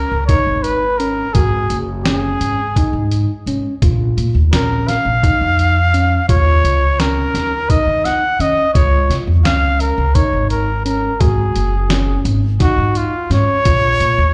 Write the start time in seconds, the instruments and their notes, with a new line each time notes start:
Already playing: tine electric piano C#4, trumpet A#4
0.12 upright bass C#2
0.27 tine electric piano D#4, trumpet C#5, kick, closed hi-hat
0.46 upright bass G#1
0.63 trumpet B4, closed hi-hat
0.98 tine electric piano C#4, trumpet A#4, closed hi-hat
1.34 upright bass G#1, tine electric piano F#4, trumpet G#4, kick, closed hi-hat
1.70 upright bass F#1, closed hi-hat
2.04 tine electric piano C#4, trumpet G#4, snare, closed hi-hat
2.40 upright bass G#1, closed hi-hat
2.76 tine electric piano D#4, kick, closed hi-hat
2.93 upright bass G#2
3.11 closed hi-hat
3.46 upright bass G#1, tine electric piano C#4, closed hi-hat
3.82 upright bass A#1, tine electric piano F4, kick, closed hi-hat
4.17 upright bass A#2, closed hi-hat
4.35 upright bass D#2
4.52 upright bass A#1, tine electric piano C#4, trumpet A#4, snare, closed hi-hat
4.88 trumpet F5, snare, closed hi-hat
5.05 upright bass A#1
5.23 tine electric piano D#4, kick, closed hi-hat
5.41 upright bass F2
5.59 closed hi-hat
5.94 tine electric piano C#4, closed hi-hat
6.29 upright bass D#2, tine electric piano F4, trumpet C#5, kick, closed hi-hat
6.64 upright bass C#2, closed hi-hat
6.99 tine electric piano C#4, trumpet A#4, snare, closed hi-hat
7.34 upright bass D#2, snare, closed hi-hat
7.70 tine electric piano D#4, trumpet D#5, kick, closed hi-hat
7.87 upright bass D#3
8.05 trumpet F#5, snare, closed hi-hat
8.39 upright bass D#3, tine electric piano C#4, trumpet D#5, closed hi-hat
8.74 upright bass C#2, tine electric piano F4, trumpet C#5, kick, closed hi-hat
9.10 upright bass C#3, snare, closed hi-hat
9.27 upright bass F2
9.45 upright bass C#2, tine electric piano C#4, trumpet F5, snare, closed hi-hat
9.80 trumpet A#4, closed hi-hat
9.98 upright bass C#2
10.15 tine electric piano D#4, trumpet C#5, kick, closed hi-hat
10.33 upright bass G#1
10.50 trumpet A#4, closed hi-hat
10.86 tine electric piano C#4, trumpet A#4, closed hi-hat
11.20 upright bass G#1, tine electric piano F#4, trumpet G#4, kick, closed hi-hat
11.56 upright bass F#1, closed hi-hat
11.89 tine electric piano C#4, snare, closed hi-hat
12.25 upright bass G#1, closed hi-hat
12.60 tine electric piano D#4, trumpet F#4, kick, snare, closed hi-hat
12.78 upright bass G#2
12.95 trumpet F4, closed hi-hat
13.30 upright bass G#2, tine electric piano C#4, trumpet C#5, snare, closed hi-hat
13.65 upright bass A#1, tine electric piano F4, kick, closed hi-hat
14.00 upright bass A#2, closed hi-hat
14.18 upright bass D#2